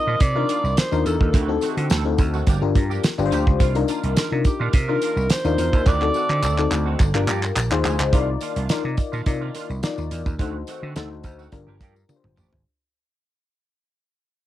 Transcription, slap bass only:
0.07 A#2
0.21 C3
0.64 C2
0.92 D#2
1.05 E2
1.21 D#2
1.34 D2
1.77 D3
1.91 D2
2.19 D2
2.47 G1
2.62 G1
2.75 G2
3.18 G1
3.32 D2
3.47 C#2
3.60 C2
4.04 C2
4.32 C3
4.60 A#2
4.74 C3
5.16 C2
5.45 D#2
5.58 E2
5.73 D#2
5.86 D2
6.29 D3
6.43 D2
6.71 D2
7.00 G1
7.14 G1
7.28 G2
7.56 A#1
7.71 D#2
7.85 D2
7.99 C#2
8.13 C2
8.56 C2
8.70 muted slap bass stroke
8.85 C3
9.13 A#2
9.26 C3
9.70 C2
9.98 D#2
10.11 E2
10.26 D#2
10.39 D2
10.83 D3
10.96 D2
11.24 D2
11.53 G1
11.67 G1
11.81 G2
12.24 G1
12.37 A1
12.53 G#1

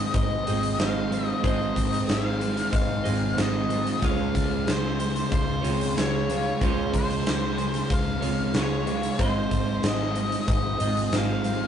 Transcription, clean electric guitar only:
Already playing: G#3 C4 F4 C5 D#5
0.47 G#3 C4 F4 C5 D#5
0.78 G#3 C4 F4 C5 D#5
1.42 G#3 C4 F4 C5 D#5
3.04 G#3 C4 F4 C5 D#5
3.36 G#3 C4 F4 C5 D#5
4.00 C#3 G#3 F4 G#4 C#5
5.62 C#3 G#3 C4 F4 G#4 C#5
5.96 C#3 G#3 F4 G#4 C#5
6.60 C#3 G#3 F4 G#4 C#5
8.21 C#3 G#3 C4 F4 G#4 C#5
8.54 C#3 G#3 F4 G#4 C#5
9.19 G#3 C4 F4 C5 D#5
10.80 G#3 C4 F4 C5 D#5
11.11 G#3 C4 F4 C5 D#5

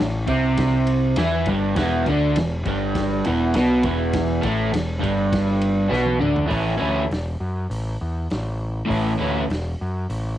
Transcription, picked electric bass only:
0.00 A1
0.28 C2
1.17 E2
1.47 G1
1.77 E1
2.07 D2
2.36 E1
2.65 G1
3.27 E1
3.55 B1
3.84 E1
4.43 A1
4.73 E1
5.03 G1
5.91 B1
6.22 D2
6.51 A1
6.81 D2
7.09 E1
7.40 F#2
7.70 A1
8.01 E2
8.31 A1
8.90 A1
9.19 D2
9.48 E1
9.81 F#2
10.09 A1

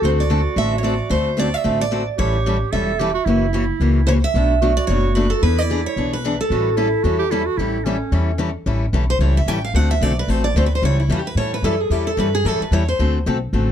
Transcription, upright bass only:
0.02 D2
0.56 A1
1.10 D2
1.65 A1
2.18 A1
2.73 E1
3.26 F#1
3.80 C#2
4.34 B1
4.88 F#1
5.42 E2
5.96 B1
6.50 A1
7.04 E2
7.57 A1
8.12 E2
8.66 A1
8.93 B1
9.19 C#2
9.46 A1
9.74 D2
10.01 B1
10.28 A1
10.55 D2
10.82 C#2
11.09 E2
11.35 A2
11.62 F#2
11.90 E2
12.17 G2
12.44 F#2
12.60 muted upright bass stroke
12.71 E2
12.99 D2
13.26 B1
13.53 A1

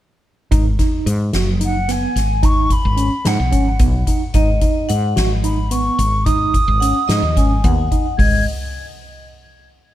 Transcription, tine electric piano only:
0.51 D#4
0.79 D#4
1.34 F#4
1.61 D#4
1.89 B3
2.43 D#4
2.97 C#4
3.25 D#4
3.52 C#4
3.79 B3
4.08 D#4
4.35 D#4
4.61 D#4
5.16 F#4
5.44 D#4
5.71 B3
6.26 D#4
6.81 C#4
7.09 D#4
7.37 C#4
7.64 B3
7.92 D#4
8.18 G#3

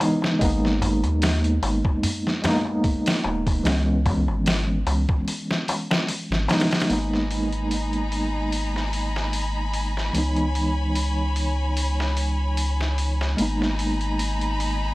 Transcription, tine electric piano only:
0.00 E3 G#3 B3 D#4
0.39 G#3 A#3 B3
0.45 D#4
2.42 G#3 A#3 B3
2.47 D#4
3.63 E3 G#3 B3
3.68 C#4
6.48 E3 G#3 B3 D#4
6.88 G#3 A#3 B3
6.93 D#4
10.13 E3 G#3 B3
10.18 D#4
13.37 G#3 A#3 B3
13.42 D#4

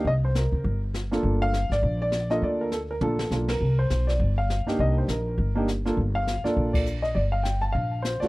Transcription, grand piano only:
0.07 D#5
0.25 C5
0.36 A#4
1.11 A#3 D4 F4 A4
1.42 F5
1.72 D5
2.02 D5
2.30 A#3 D4 F4 A4 D#5
2.43 D5
2.61 A#4
2.72 A4
2.91 A#4
3.01 A#3 D4 F4 A4
3.31 A#3 D4 F4 A4
3.50 A#4
3.79 C5
4.07 D5
4.38 F5
4.67 A#3 D4 D#4 G4
4.80 D#5
4.93 A#4
4.98 C5
5.10 A#4
5.55 A#3 D4 D#4 G4
5.85 A#3 D4 F4 A4
6.15 F5
6.44 A#3 D4 F4 A4 D5
6.73 D5
7.02 D#5
7.15 D5
7.32 F5
7.43 G5
7.62 A5
7.72 F5
8.02 C5
8.20 A3 C4 F4 F#4 D5

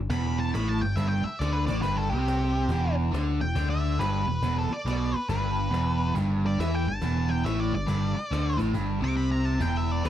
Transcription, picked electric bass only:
0.10 E1
0.54 A1
0.82 G1
0.97 G1
1.24 muted picked electric bass stroke
1.40 D2
1.68 A1
1.83 G1
2.11 C2
2.69 E1
3.13 D2
3.40 E1
3.56 D2
3.98 G1
4.27 E1
4.42 E1
4.70 muted picked electric bass stroke
4.85 B1
5.14 muted picked electric bass stroke
5.29 G1
5.71 E1
6.15 G1
6.59 E2
6.87 G1
7.02 E1
7.45 A1
7.73 G1
7.87 G1
8.16 muted picked electric bass stroke
8.31 D2
8.59 A1
8.74 G1
9.02 C2
9.60 E1
10.04 D2

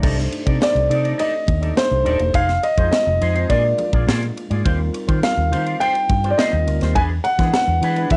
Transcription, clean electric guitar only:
0.02 D#4 A4 D5
0.17 muted clean electric guitar stroke
0.32 muted clean electric guitar stroke
0.46 D#4 A4 D5
0.61 muted clean electric guitar stroke
0.75 muted clean electric guitar stroke
0.89 D#4 A4 D5
1.04 D#4 A4 D5
1.18 D#4 A4 D5
1.33 muted clean electric guitar stroke
1.47 muted clean electric guitar stroke
1.61 D#4 A4 D5
1.91 muted clean electric guitar stroke
2.04 D#4 A4 D5
2.19 muted clean electric guitar stroke
2.34 D#4 G#4 C5
2.48 muted clean electric guitar stroke
2.63 muted clean electric guitar stroke
2.78 D#4 G#4 C5
2.92 muted clean electric guitar stroke
3.06 muted clean electric guitar stroke
3.21 D#4 G#4 C5
3.35 D#4 G#4 C5
3.50 F4 G#4 D5
3.64 muted clean electric guitar stroke
3.79 muted clean electric guitar stroke
3.93 F4 G#4 D5
4.08 F4 G#4 D5
4.23 muted clean electric guitar stroke
4.37 muted clean electric guitar stroke
4.51 F4 G#4 D5
4.65 F4 G4 C5
4.79 muted clean electric guitar stroke
4.93 muted clean electric guitar stroke
5.08 F4 G4 C5
5.22 muted clean electric guitar stroke
5.37 muted clean electric guitar stroke
5.51 F4 G4 C5
5.66 F4 G4 C5
5.80 F4 G4 C5
5.95 muted clean electric guitar stroke
6.09 muted clean electric guitar stroke
6.24 F4 G4 C5
6.38 F4 G4 C5
6.53 muted clean electric guitar stroke
6.67 muted clean electric guitar stroke
6.82 F4 G4 C5
6.96 D4 G#4 B4
7.11 muted clean electric guitar stroke
7.25 muted clean electric guitar stroke
7.39 D4 G#4 B4
7.54 muted clean electric guitar stroke
7.68 muted clean electric guitar stroke
7.83 D4 G#4 B4
7.97 D4 G#4 B4
8.11 muted clean electric guitar stroke

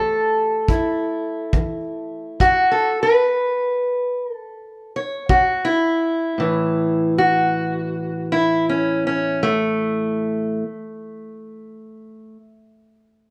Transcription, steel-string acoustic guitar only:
Already playing: E3 A3 A4
0.69 E2 E4
1.54 E3
2.40 A2 F#4
2.71 A4
3.03 B4
4.33 A4
4.96 C#5
5.29 A#2 F#4
5.65 E4
6.38 A2 E3
7.18 F#4
8.32 E4
8.69 C#4
9.07 C#4
9.43 A3

